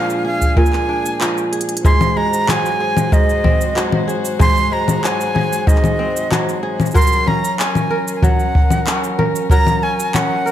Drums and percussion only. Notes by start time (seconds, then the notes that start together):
0.10 shaker
0.42 kick, shaker
0.57 kick
0.66 shaker
0.73 clap
1.06 shaker
1.21 clap, shaker
1.38 shaker
1.53 closed hi-hat
1.61 closed hi-hat
1.69 closed hi-hat
1.77 closed hi-hat
1.85 kick, shaker
2.01 low conga, shaker
2.34 shaker
2.49 clap, low conga, shaker
2.66 shaker
2.97 low conga, shaker
3.12 kick, shaker
3.29 shaker
3.44 kick, low conga
3.61 shaker
3.77 clap, shaker
3.92 low conga
4.09 shaker
4.25 shaker
4.40 kick, low conga, shaker
4.57 shaker
4.88 low conga, shaker
5.04 clap, shaker
5.21 shaker
5.36 low conga
5.53 shaker
5.67 kick, shaker
5.76 clap
5.84 low conga, shaker
6.17 shaker
6.32 clap, low conga, shaker
6.49 shaker
6.80 low conga, shaker
6.86 shaker
6.91 shaker
6.95 kick, shaker
7.02 shaker
7.07 shaker
7.12 shaker
7.28 low conga
7.45 shaker
7.60 clap, shaker
7.75 low conga, shaker
8.08 shaker
8.22 kick, low conga, shaker
8.40 shaker
8.55 kick
8.71 low conga, shaker
8.87 clap, shaker
9.04 shaker
9.19 low conga
9.36 shaker
9.50 kick, shaker
9.67 low conga, shaker
10.00 shaker
10.14 clap, low conga, shaker
10.47 shaker